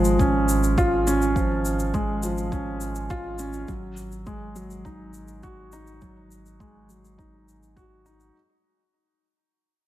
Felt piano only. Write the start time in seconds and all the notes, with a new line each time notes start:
Already playing: F3 G#3
0.20 C#4
0.78 F4
1.07 C#4
1.36 F3
1.94 G#3
2.23 F3
2.52 C#4
3.10 F4
3.39 C#4
3.69 F#3
4.27 G#3
4.55 F#3
4.85 D#4
5.43 F#4
5.73 D#4
6.02 F#3
6.60 G#3
6.89 F#3
7.18 D#4
7.76 F#4
8.06 D#4